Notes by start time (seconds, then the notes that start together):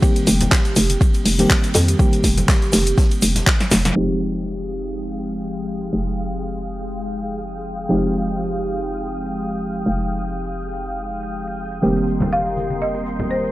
0.02 D#3 G3 A#3 C4 G4, kick, ride, shaker
0.16 closed hi-hat, shaker
0.27 F1, open hi-hat, ride, shaker
0.40 closed hi-hat, ride, high conga, low conga, shaker
0.51 kick, snare, clap, ride, shaker
0.65 closed hi-hat, ride, shaker
0.76 F1, open hi-hat, ride, high conga, shaker
0.90 closed hi-hat, high conga, shaker
1.01 kick, ride, shaker
1.14 closed hi-hat, ride, shaker
1.25 F1, open hi-hat, shaker
1.38 D#3 G3 A#3 C4 G4, snare, closed hi-hat, low conga, shaker
1.50 kick, snare, clap, ride, shaker
1.64 closed hi-hat, shaker
1.74 F2, snare, open hi-hat, ride, low conga, shaker
1.88 closed hi-hat, shaker
1.99 D#3 G3 A#3 C4 G4, kick, ride, shaker
2.12 closed hi-hat, shaker
2.24 F1, kick, snare, open hi-hat, ride, shaker
2.38 closed hi-hat, high conga, low conga, shaker
2.48 kick, snare, clap, ride, shaker
2.62 closed hi-hat, shaker
2.72 F1, snare, open hi-hat, ride, high conga, shaker
2.86 closed hi-hat, shaker
2.98 kick, snare, ride, shaker
3.11 closed hi-hat, ride, shaker
3.22 F1, open hi-hat, ride, shaker
3.36 snare, closed hi-hat, low conga, shaker
3.47 kick, snare, clap, ride, shaker
3.60 snare, closed hi-hat, shaker
3.71 F1, snare, open hi-hat, ride, low conga, shaker
3.85 snare, closed hi-hat, ride, high conga, shaker
3.95 F1 F3 G#3 C4 D#4 G4 F5 G5 D#6
4.34 closed hi-hat
4.59 closed hi-hat
4.83 closed hi-hat
5.08 closed hi-hat
5.33 closed hi-hat
5.57 closed hi-hat
5.82 closed hi-hat
5.93 F1
6.06 closed hi-hat
6.31 closed hi-hat
6.56 closed hi-hat
6.80 closed hi-hat
7.05 closed hi-hat
7.29 closed hi-hat
7.54 closed hi-hat
7.78 closed hi-hat
7.89 F1 F3 G#3 C4 D#4 G4
8.03 closed hi-hat
8.28 closed hi-hat
8.52 closed hi-hat
8.77 closed hi-hat
9.01 closed hi-hat
9.26 closed hi-hat
9.51 closed hi-hat
9.75 closed hi-hat
9.86 F1
10.00 closed hi-hat
10.24 closed hi-hat
10.49 closed hi-hat
10.74 closed hi-hat
10.98 closed hi-hat
11.23 closed hi-hat
11.47 closed hi-hat
11.72 closed hi-hat
11.82 F1 D#3 G3 A#3 C4 G4 A#4 D#5 C6, shaker
11.97 closed hi-hat, shaker
12.07 shaker
12.20 closed hi-hat, high conga, low conga, shaker
12.32 F5, shaker
12.46 closed hi-hat, shaker
12.57 high conga, shaker
12.70 closed hi-hat, high conga, shaker
12.81 D#5, shaker
12.95 closed hi-hat, high bongo, shaker
13.06 shaker
13.19 closed hi-hat, high bongo, low conga, shaker
13.30 C5, shaker
13.44 closed hi-hat, shaker